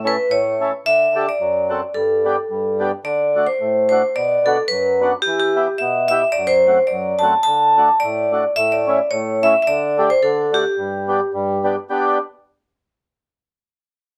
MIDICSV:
0, 0, Header, 1, 3, 480
1, 0, Start_track
1, 0, Key_signature, 1, "major"
1, 0, Tempo, 552486
1, 734, Time_signature, 2, 2, 24, 8
1, 12319, End_track
2, 0, Start_track
2, 0, Title_t, "Vibraphone"
2, 0, Program_c, 0, 11
2, 63, Note_on_c, 0, 71, 83
2, 272, Note_on_c, 0, 73, 87
2, 273, Note_off_c, 0, 71, 0
2, 609, Note_off_c, 0, 73, 0
2, 748, Note_on_c, 0, 76, 100
2, 1118, Note_on_c, 0, 74, 80
2, 1121, Note_off_c, 0, 76, 0
2, 1689, Note_on_c, 0, 69, 71
2, 1712, Note_off_c, 0, 74, 0
2, 2397, Note_off_c, 0, 69, 0
2, 2648, Note_on_c, 0, 74, 87
2, 2994, Note_off_c, 0, 74, 0
2, 3011, Note_on_c, 0, 72, 79
2, 3369, Note_off_c, 0, 72, 0
2, 3380, Note_on_c, 0, 72, 74
2, 3609, Note_off_c, 0, 72, 0
2, 3612, Note_on_c, 0, 74, 92
2, 3873, Note_on_c, 0, 69, 70
2, 3882, Note_off_c, 0, 74, 0
2, 3971, Note_off_c, 0, 69, 0
2, 4066, Note_on_c, 0, 71, 86
2, 4423, Note_off_c, 0, 71, 0
2, 4535, Note_on_c, 0, 67, 96
2, 4673, Note_off_c, 0, 67, 0
2, 4687, Note_on_c, 0, 67, 82
2, 5025, Note_on_c, 0, 76, 85
2, 5052, Note_off_c, 0, 67, 0
2, 5275, Note_off_c, 0, 76, 0
2, 5285, Note_on_c, 0, 76, 94
2, 5491, Note_on_c, 0, 74, 104
2, 5522, Note_off_c, 0, 76, 0
2, 5622, Note_on_c, 0, 72, 95
2, 5647, Note_off_c, 0, 74, 0
2, 5969, Note_on_c, 0, 74, 83
2, 6003, Note_off_c, 0, 72, 0
2, 6244, Note_on_c, 0, 81, 88
2, 6264, Note_off_c, 0, 74, 0
2, 6446, Note_off_c, 0, 81, 0
2, 6457, Note_on_c, 0, 81, 106
2, 6949, Note_on_c, 0, 74, 93
2, 6972, Note_off_c, 0, 81, 0
2, 7408, Note_off_c, 0, 74, 0
2, 7437, Note_on_c, 0, 76, 109
2, 7501, Note_off_c, 0, 76, 0
2, 7577, Note_on_c, 0, 74, 81
2, 7912, Note_on_c, 0, 73, 91
2, 7940, Note_off_c, 0, 74, 0
2, 8194, Note_off_c, 0, 73, 0
2, 8194, Note_on_c, 0, 76, 82
2, 8351, Note_off_c, 0, 76, 0
2, 8362, Note_on_c, 0, 76, 88
2, 8404, Note_on_c, 0, 74, 95
2, 8414, Note_off_c, 0, 76, 0
2, 8776, Note_on_c, 0, 72, 87
2, 8789, Note_off_c, 0, 74, 0
2, 8884, Note_on_c, 0, 69, 78
2, 8890, Note_off_c, 0, 72, 0
2, 9158, Note_off_c, 0, 69, 0
2, 9159, Note_on_c, 0, 67, 76
2, 9821, Note_off_c, 0, 67, 0
2, 12319, End_track
3, 0, Start_track
3, 0, Title_t, "Accordion"
3, 0, Program_c, 1, 21
3, 0, Note_on_c, 1, 45, 66
3, 38, Note_on_c, 1, 61, 55
3, 43, Note_on_c, 1, 64, 52
3, 46, Note_on_c, 1, 69, 70
3, 136, Note_off_c, 1, 61, 0
3, 139, Note_off_c, 1, 64, 0
3, 140, Note_off_c, 1, 69, 0
3, 147, Note_off_c, 1, 45, 0
3, 257, Note_on_c, 1, 45, 78
3, 527, Note_on_c, 1, 61, 57
3, 532, Note_on_c, 1, 64, 53
3, 535, Note_on_c, 1, 69, 52
3, 620, Note_off_c, 1, 61, 0
3, 621, Note_off_c, 1, 45, 0
3, 622, Note_off_c, 1, 64, 0
3, 624, Note_off_c, 1, 69, 0
3, 746, Note_on_c, 1, 50, 63
3, 1003, Note_on_c, 1, 62, 64
3, 1005, Note_on_c, 1, 67, 59
3, 1008, Note_on_c, 1, 69, 73
3, 1096, Note_off_c, 1, 62, 0
3, 1097, Note_off_c, 1, 67, 0
3, 1099, Note_off_c, 1, 69, 0
3, 1104, Note_off_c, 1, 50, 0
3, 1218, Note_on_c, 1, 42, 67
3, 1475, Note_on_c, 1, 66, 49
3, 1476, Note_on_c, 1, 60, 64
3, 1478, Note_on_c, 1, 69, 56
3, 1571, Note_off_c, 1, 60, 0
3, 1571, Note_off_c, 1, 66, 0
3, 1572, Note_off_c, 1, 69, 0
3, 1578, Note_off_c, 1, 42, 0
3, 1694, Note_on_c, 1, 43, 65
3, 1955, Note_on_c, 1, 59, 57
3, 1956, Note_on_c, 1, 62, 58
3, 1962, Note_on_c, 1, 67, 70
3, 2050, Note_off_c, 1, 59, 0
3, 2050, Note_off_c, 1, 62, 0
3, 2053, Note_off_c, 1, 67, 0
3, 2056, Note_off_c, 1, 43, 0
3, 2175, Note_on_c, 1, 43, 61
3, 2429, Note_on_c, 1, 62, 51
3, 2431, Note_on_c, 1, 59, 66
3, 2435, Note_on_c, 1, 67, 79
3, 2527, Note_off_c, 1, 62, 0
3, 2528, Note_off_c, 1, 59, 0
3, 2530, Note_off_c, 1, 67, 0
3, 2537, Note_off_c, 1, 43, 0
3, 2648, Note_on_c, 1, 50, 67
3, 2916, Note_on_c, 1, 57, 67
3, 2920, Note_on_c, 1, 62, 58
3, 2920, Note_on_c, 1, 66, 67
3, 3011, Note_off_c, 1, 57, 0
3, 3013, Note_off_c, 1, 62, 0
3, 3013, Note_off_c, 1, 66, 0
3, 3014, Note_off_c, 1, 50, 0
3, 3133, Note_on_c, 1, 45, 60
3, 3398, Note_on_c, 1, 57, 54
3, 3401, Note_on_c, 1, 62, 53
3, 3404, Note_on_c, 1, 66, 59
3, 3493, Note_off_c, 1, 57, 0
3, 3494, Note_off_c, 1, 62, 0
3, 3495, Note_off_c, 1, 66, 0
3, 3497, Note_off_c, 1, 45, 0
3, 3621, Note_on_c, 1, 47, 67
3, 3875, Note_on_c, 1, 59, 55
3, 3878, Note_on_c, 1, 62, 61
3, 3884, Note_on_c, 1, 66, 72
3, 3971, Note_off_c, 1, 59, 0
3, 3973, Note_off_c, 1, 62, 0
3, 3976, Note_off_c, 1, 66, 0
3, 3982, Note_off_c, 1, 47, 0
3, 4087, Note_on_c, 1, 42, 66
3, 4350, Note_on_c, 1, 59, 63
3, 4357, Note_on_c, 1, 62, 58
3, 4359, Note_on_c, 1, 66, 70
3, 4449, Note_off_c, 1, 59, 0
3, 4452, Note_off_c, 1, 62, 0
3, 4453, Note_off_c, 1, 66, 0
3, 4454, Note_off_c, 1, 42, 0
3, 4574, Note_on_c, 1, 52, 71
3, 4829, Note_on_c, 1, 59, 55
3, 4831, Note_on_c, 1, 64, 53
3, 4832, Note_on_c, 1, 67, 60
3, 4927, Note_off_c, 1, 59, 0
3, 4928, Note_off_c, 1, 64, 0
3, 4929, Note_off_c, 1, 67, 0
3, 4937, Note_off_c, 1, 52, 0
3, 5047, Note_on_c, 1, 47, 69
3, 5301, Note_on_c, 1, 59, 53
3, 5302, Note_on_c, 1, 64, 54
3, 5308, Note_on_c, 1, 67, 69
3, 5404, Note_off_c, 1, 59, 0
3, 5404, Note_off_c, 1, 64, 0
3, 5407, Note_off_c, 1, 67, 0
3, 5414, Note_off_c, 1, 47, 0
3, 5532, Note_on_c, 1, 42, 72
3, 5794, Note_on_c, 1, 57, 57
3, 5799, Note_on_c, 1, 66, 62
3, 5800, Note_on_c, 1, 60, 60
3, 5892, Note_off_c, 1, 57, 0
3, 5895, Note_off_c, 1, 60, 0
3, 5895, Note_off_c, 1, 66, 0
3, 5899, Note_off_c, 1, 42, 0
3, 6008, Note_on_c, 1, 42, 71
3, 6274, Note_on_c, 1, 57, 56
3, 6276, Note_on_c, 1, 60, 53
3, 6277, Note_on_c, 1, 66, 68
3, 6373, Note_off_c, 1, 57, 0
3, 6374, Note_off_c, 1, 60, 0
3, 6375, Note_off_c, 1, 66, 0
3, 6378, Note_off_c, 1, 42, 0
3, 6494, Note_on_c, 1, 50, 74
3, 6752, Note_on_c, 1, 57, 59
3, 6754, Note_on_c, 1, 62, 54
3, 6757, Note_on_c, 1, 66, 64
3, 6853, Note_off_c, 1, 57, 0
3, 6854, Note_off_c, 1, 62, 0
3, 6855, Note_off_c, 1, 66, 0
3, 6861, Note_off_c, 1, 50, 0
3, 6976, Note_on_c, 1, 45, 77
3, 7226, Note_on_c, 1, 57, 59
3, 7234, Note_on_c, 1, 62, 59
3, 7238, Note_on_c, 1, 66, 56
3, 7330, Note_off_c, 1, 57, 0
3, 7334, Note_off_c, 1, 62, 0
3, 7336, Note_off_c, 1, 66, 0
3, 7343, Note_off_c, 1, 45, 0
3, 7447, Note_on_c, 1, 45, 71
3, 7707, Note_on_c, 1, 57, 71
3, 7710, Note_on_c, 1, 61, 53
3, 7717, Note_on_c, 1, 64, 71
3, 7811, Note_off_c, 1, 57, 0
3, 7812, Note_off_c, 1, 61, 0
3, 7815, Note_off_c, 1, 64, 0
3, 7817, Note_off_c, 1, 45, 0
3, 7927, Note_on_c, 1, 45, 73
3, 8187, Note_on_c, 1, 57, 58
3, 8191, Note_on_c, 1, 61, 58
3, 8197, Note_on_c, 1, 64, 71
3, 8289, Note_off_c, 1, 57, 0
3, 8291, Note_off_c, 1, 61, 0
3, 8294, Note_off_c, 1, 64, 0
3, 8295, Note_off_c, 1, 45, 0
3, 8405, Note_on_c, 1, 50, 82
3, 8671, Note_on_c, 1, 57, 61
3, 8674, Note_on_c, 1, 62, 55
3, 8679, Note_on_c, 1, 67, 77
3, 8770, Note_off_c, 1, 57, 0
3, 8771, Note_off_c, 1, 62, 0
3, 8772, Note_off_c, 1, 50, 0
3, 8774, Note_off_c, 1, 67, 0
3, 8886, Note_on_c, 1, 50, 84
3, 9145, Note_on_c, 1, 57, 60
3, 9147, Note_on_c, 1, 62, 54
3, 9150, Note_on_c, 1, 66, 61
3, 9246, Note_off_c, 1, 57, 0
3, 9247, Note_off_c, 1, 62, 0
3, 9248, Note_off_c, 1, 66, 0
3, 9253, Note_off_c, 1, 50, 0
3, 9362, Note_on_c, 1, 43, 64
3, 9627, Note_on_c, 1, 59, 62
3, 9630, Note_on_c, 1, 62, 57
3, 9635, Note_on_c, 1, 67, 63
3, 9729, Note_off_c, 1, 59, 0
3, 9730, Note_off_c, 1, 62, 0
3, 9733, Note_off_c, 1, 67, 0
3, 9734, Note_off_c, 1, 43, 0
3, 9850, Note_on_c, 1, 43, 86
3, 10114, Note_on_c, 1, 59, 63
3, 10115, Note_on_c, 1, 62, 56
3, 10117, Note_on_c, 1, 67, 62
3, 10215, Note_off_c, 1, 59, 0
3, 10215, Note_off_c, 1, 62, 0
3, 10217, Note_off_c, 1, 67, 0
3, 10221, Note_off_c, 1, 43, 0
3, 10338, Note_on_c, 1, 67, 81
3, 10339, Note_on_c, 1, 59, 76
3, 10344, Note_on_c, 1, 62, 68
3, 10584, Note_off_c, 1, 67, 0
3, 10585, Note_off_c, 1, 59, 0
3, 10587, Note_off_c, 1, 62, 0
3, 12319, End_track
0, 0, End_of_file